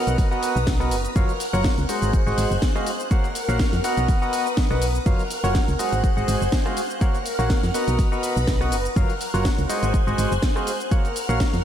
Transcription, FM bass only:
0.07 B1
0.56 B1
0.91 F#1
1.16 F#1
1.53 F#1
1.78 C#2
2.02 G#1
2.27 G#1
2.38 G#1
2.51 F#1
3.48 A#1
3.73 F2
3.97 B1
4.70 B1
5.06 F#1
5.44 F#1
5.68 C#2
5.93 G#1
6.17 G#1
6.28 G#1
6.41 F#1
7.39 A#1
7.63 F2
7.88 B1
8.36 B1
8.72 F#1
8.96 F#1
9.34 F#1
9.58 C#2
9.83 G#1
10.07 G#1
10.18 G#1
10.31 F#1
11.29 A#1
11.53 F2

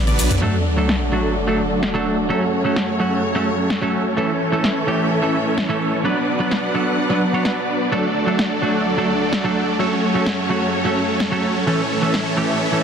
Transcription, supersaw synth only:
0.07 F#3 B3 D4 B4 D5
0.42 F#3 A3 D4 A4 D5
2.30 F#3 A3 C#4 A4 C#5
4.17 E3 A3 C#4 A4 C#5
6.05 F#3 B3 D4 B4 D5
7.92 F#3 A3 D4 A4 D5
9.80 F#3 A3 C#4 A4 C#5
11.67 E3 A3 C#4 A4 C#5

